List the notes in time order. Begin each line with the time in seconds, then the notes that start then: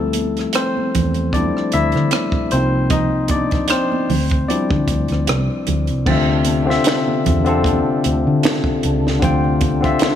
Already playing: D2 F3 G3 A3 C4 E4 A4
0.13 closed hi-hat, high conga
0.37 cross-stick, closed hi-hat
0.53 C4 C5, cross-stick, closed hi-hat, muted conga
0.77 high conga
0.95 E2, kick, closed hi-hat, low conga
1.14 closed hi-hat
1.33 F3 G3 C4 D4 E4 D5, kick, closed hi-hat, muted conga, high conga
1.57 cross-stick
1.72 D2 E4 E5, closed hi-hat
1.92 D3, cross-stick, closed hi-hat
2.11 cross-stick, closed hi-hat, muted conga, high conga
2.32 kick, muted conga
2.51 C2 F3 A#3 C4 D#4 F4 C5, closed hi-hat
2.90 D#4 D#5, kick, closed hi-hat, muted conga, low conga
3.28 D5, kick, closed hi-hat, high conga
3.32 D4
3.51 kick, cross-stick, closed hi-hat
3.68 C4 C5, cross-stick, closed hi-hat, muted conga
3.92 muted conga, high conga
4.10 D2, open hi-hat, low conga
4.30 kick, closed hi-hat
4.48 F3 G3 C4 D4 E4 D5, closed hi-hat, high conga
4.69 D3, kick, muted conga
4.88 D2, kick, closed hi-hat
5.08 D2, cross-stick, closed hi-hat
5.27 C2, cross-stick, closed hi-hat, high conga
5.67 D2, closed hi-hat, low conga
5.87 C2, closed hi-hat
6.06 D2 C3 D3 C4 D4 F4, kick, crash, muted conga, low conga
6.10 E5
6.29 muted conga
6.45 closed hi-hat, high conga
6.65 D3 C4 F4
6.70 E5, snare
6.84 finger snap, snare, closed hi-hat
7.08 muted conga, high conga
7.25 E2, kick, closed hi-hat, low conga
7.44 D3 C4 F4, closed hi-hat
7.49 A4
7.64 kick, closed hi-hat, high conga
8.04 D2, closed hi-hat
8.27 D3
8.43 finger snap, snare, closed hi-hat, muted conga, high conga
8.64 kick, muted conga
8.83 C#2, closed hi-hat
9.07 snare
9.20 D2 D3 C4 F4, kick, closed hi-hat, low conga
9.24 G5
9.44 muted conga
9.61 kick, closed hi-hat, high conga
9.81 D3 C4 F4, kick, closed hi-hat
9.85 E5
9.99 finger snap, snare, closed hi-hat, muted conga